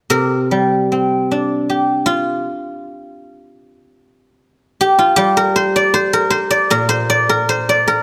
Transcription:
0.10 C3 A#4
0.45 B4
0.51 G3
0.67 C5
0.92 C4
1.31 D4
1.70 G4
2.06 F4
4.81 G4
4.99 F4
5.16 G3 G4
5.37 A#4
5.56 C5
5.76 D5
5.94 C5
6.13 A#4
6.30 C5
6.51 D5
6.70 A#2 A#4
6.89 C5
7.10 D5
7.29 A#4
7.49 C5
7.69 D5
7.88 A#4

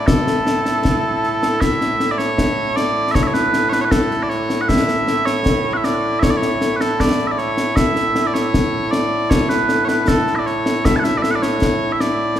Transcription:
Already playing: A2 A3 E4
0.07 A4, concert bass drum, snare
0.27 snare
0.47 snare
0.66 snare
0.85 concert bass drum, snare
1.24 snare
1.43 snare
1.61 E5, concert bass drum, snare
1.81 snare
2.00 snare
2.11 D5
2.18 C#5, snare
2.38 concert bass drum, snare
2.76 D5, snare
3.11 C#5 E5, concert bass drum, snare
3.23 E5
3.27 C#5
3.34 B4, snare
3.53 snare
3.69 B4 C#5, snare
3.81 B4 C#5
3.91 A4, concert bass drum, snare
4.11 snare
4.23 D5
4.30 C#5, snare
4.50 snare
4.61 F#5
4.68 E5, concert bass drum, snare
4.88 snare
5.08 snare
5.26 C#5, snare
5.46 concert bass drum, snare
5.74 E5 F#5
5.84 D5, snare
6.19 C#5 E5, concert bass drum, snare
6.31 D5
6.38 C#5
6.42 snare
6.61 snare
6.76 B4
6.81 A4, snare
7.00 D5, concert bass drum, snare
7.19 snare
7.27 E5
7.32 D5
7.38 C#5, snare
7.57 snare
7.76 E5, concert bass drum, snare
7.96 snare
8.15 snare
8.27 D5
8.34 C#5, snare
8.54 concert bass drum, snare
8.91 D5, snare
9.30 C#5, concert bass drum, snare
9.49 B4, snare
9.69 snare
9.85 B4 C#5, snare
10.08 A4, concert bass drum, snare
10.27 snare
10.36 D5 E5
10.47 C#5, snare
10.66 snare
10.85 E5, concert bass drum, snare
10.96 F#5 A5
11.04 E5, snare
11.18 D5
11.22 E5, snare
11.31 F#5
11.35 D5
11.43 C#5, snare
11.62 concert bass drum, snare
11.92 E5
12.00 D5, snare

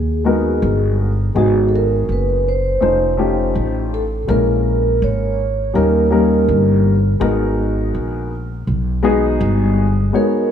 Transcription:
Already playing: D#2 G#4
0.24 G#3 B3 D#4 F#4 A#4
0.62 G1
1.35 G#1 G#3 B3 D#4 F#4 G#4
1.68 A4
1.76 A#4
2.09 F#1 B4
2.49 C5
2.81 F1 A3 C#4 D#4 F4 C5
3.17 A3 C#4 D#4 F4 G4
3.55 A1
3.94 A4
4.27 A#1 G#3 A#3 C#4 E4 A#4
5.02 G#1 C#5
5.74 D#2 G3 A#3 C#4 D#4 A#4
6.10 G3 A#3 C#4 D#4 A#4
6.48 G1
7.20 G#1 G#3 B3 D#4 F#4 A#4
7.95 A#1
8.67 B1
9.03 G#3 B3 D#4 F#4 G#4
9.41 G1
10.13 G#3 B3 D#4 F#4 A#4 C#5

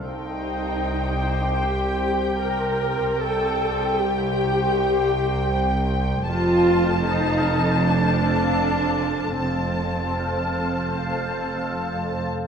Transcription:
0.05 C2 D#4 G4 C5 G5
1.61 G4
2.39 A#4
3.16 C2 G4 A4 C5 G5
3.96 G4
6.28 F1 F2 F4 A4 C5 F5 A5
7.07 D#4
7.84 D4
9.40 F1 F2 C4 A4 C5 F5 A5

